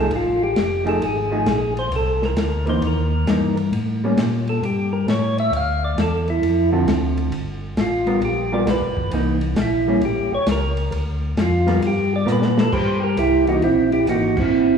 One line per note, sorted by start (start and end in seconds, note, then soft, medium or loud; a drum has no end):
0.00 0.10 A3 medium
0.00 0.10 D#4 medium
0.00 0.10 G#4 medium
0.00 0.13 A4 medium
0.11 0.55 A1 medium
0.11 ride medium
0.16 0.43 F4 medium
0.43 0.84 G4 medium
0.56 1.00 F1 medium
0.56 snare medium
0.56 hi-hat pedal soft
0.56 ride medium
0.85 0.99 F3 medium
0.85 1.00 A3 medium
0.85 1.00 D#4 medium
0.85 1.00 G#4 medium
0.85 1.03 A4 loud
0.85 ride soft
1.01 1.45 G#1 medium
1.01 1.74 G#4 medium
1.01 ride medium
1.31 1.45 F3 medium
1.31 1.45 A3 medium
1.31 1.46 D#4 medium
1.31 1.46 G#4 medium
1.46 1.90 A#1 medium
1.46 snare medium
1.46 hi-hat pedal medium
1.46 ride medium
1.77 1.93 C5 loud
1.77 ride medium
1.90 2.35 C2 medium
1.90 ride medium
1.96 2.23 A4 medium
2.22 2.66 A#4 medium
2.22 snare soft
2.35 2.80 D2 medium
2.35 snare medium
2.35 hi-hat pedal medium
2.35 ride medium
2.66 2.80 E3 medium
2.66 2.81 A#3 medium
2.66 2.81 D#4 medium
2.66 2.83 C5 loud
2.66 ride soft
2.81 3.25 D#2 medium
2.81 ride medium
2.87 3.55 A#4 medium
3.26 3.70 G2 medium
3.26 3.54 E3 medium
3.26 3.55 A#3 medium
3.26 3.55 D#4 medium
3.26 snare medium
3.26 hi-hat pedal medium
3.26 ride medium
3.57 ride medium
3.71 4.15 A2 medium
3.71 ride medium
4.04 4.17 G3 medium
4.04 4.17 A#3 medium
4.04 4.17 C#4 medium
4.16 4.60 A#2 medium
4.16 snare medium
4.16 hi-hat pedal medium
4.16 ride medium
4.47 4.63 A4 medium
4.47 ride soft
4.62 5.06 G2 medium
4.62 4.93 G4 medium
4.62 ride medium
4.93 5.07 A#4 medium
5.07 5.51 A2 medium
5.07 5.38 C#5 medium
5.07 snare medium
5.07 hi-hat pedal medium
5.07 ride medium
5.38 5.53 E5 medium
5.38 ride medium
5.50 5.95 D2 medium
5.50 ride medium
5.57 5.83 F5 medium
5.84 5.98 D5 medium
5.96 6.40 E2 medium
5.96 snare medium
5.96 hi-hat pedal medium
5.96 ride medium
6.01 6.28 A4 medium
6.28 6.71 E4 medium
6.28 ride soft
6.42 6.86 F2 medium
6.42 ride medium
6.72 7.29 D3 medium
6.72 7.29 C4 medium
6.72 7.29 F4 medium
6.72 7.30 A4 medium
6.86 7.30 D2 medium
6.86 snare medium
6.86 hi-hat pedal medium
6.86 ride medium
7.17 ride medium
7.30 7.75 G1 medium
7.30 ride medium
7.76 8.20 A1 medium
7.76 snare medium
7.76 hi-hat pedal medium
7.76 ride medium
7.81 8.21 F4 medium
8.06 8.20 G3 medium
8.06 8.21 B3 medium
8.06 8.21 F4 medium
8.06 8.21 A#4 medium
8.06 ride soft
8.21 8.65 A#1 medium
8.21 ride medium
8.25 8.53 G4 medium
8.52 8.66 G3 medium
8.52 8.66 B3 medium
8.52 8.66 F4 medium
8.52 8.66 A#4 medium
8.52 8.68 D5 medium
8.65 8.81 B1 medium
8.65 snare medium
8.65 hi-hat pedal medium
8.65 ride medium
8.70 9.11 B4 medium
8.80 8.96 G1 medium
8.96 9.11 F1 medium
8.96 kick medium
9.11 9.55 C2 medium
9.11 9.39 E3 medium
9.11 9.39 A#3 medium
9.11 9.40 D#4 medium
9.11 ride medium
9.41 ride soft
9.55 10.00 A#1 medium
9.55 snare medium
9.55 hi-hat pedal medium
9.55 ride medium
9.62 10.01 E4 medium
9.88 10.01 G3 medium
9.88 10.01 A#3 medium
9.88 10.01 C#4 medium
10.01 10.29 A1 medium
10.01 ride medium
10.05 10.33 G4 medium
10.30 10.38 A1 soft
10.35 10.48 C#5 loud
10.46 10.90 C#2 medium
10.46 snare medium
10.46 hi-hat pedal medium
10.46 ride medium
10.51 10.91 A#4 medium
10.77 ride soft
10.91 11.35 D2 medium
10.91 ride medium
11.36 11.80 F2 medium
11.36 snare medium
11.36 hi-hat pedal medium
11.36 ride medium
11.41 11.81 F4 medium
11.67 11.80 G3 medium
11.67 11.80 B3 medium
11.67 11.81 F4 medium
11.67 11.81 A#4 medium
11.67 snare soft
11.67 ride soft
11.81 12.25 G2 medium
11.81 ride medium
11.87 12.13 G4 medium
12.16 12.28 D5 loud
12.26 12.70 A#2 loud
12.26 12.53 G3 medium
12.26 12.53 B3 medium
12.26 12.54 F4 medium
12.26 12.54 A#4 medium
12.26 hi-hat pedal medium
12.32 12.58 B4 medium
12.42 snare medium
12.58 12.72 A4 medium
12.58 12.73 B4 loud
12.58 snare medium
12.72 13.16 G2 medium
12.72 13.00 G4 medium
12.72 13.03 C5 medium
12.72 kick medium
12.72 crash medium
13.03 13.17 G4 medium
13.03 13.18 A#4 medium
13.16 13.60 C2 medium
13.16 13.46 E4 medium
13.16 13.48 G4 medium
13.16 hi-hat pedal medium
13.16 ride medium
13.47 13.61 E3 medium
13.47 13.61 A#3 medium
13.47 13.62 D#4 medium
13.47 13.63 F#4 medium
13.47 ride soft
13.61 14.05 A#1 medium
13.61 13.91 C4 medium
13.61 13.92 E4 medium
13.61 ride medium
13.92 14.07 E4 medium
13.92 14.08 G4 medium
13.92 ride soft
14.06 14.50 G#1 medium
14.06 14.34 E3 medium
14.06 14.34 A#3 medium
14.06 14.35 D#4 medium
14.06 14.36 D#4 medium
14.06 14.39 F#4 medium
14.06 hi-hat pedal medium
14.06 ride medium
14.37 14.78 C4 medium
14.37 14.78 E4 medium
14.37 kick medium
14.37 crash medium
14.50 14.78 G1 medium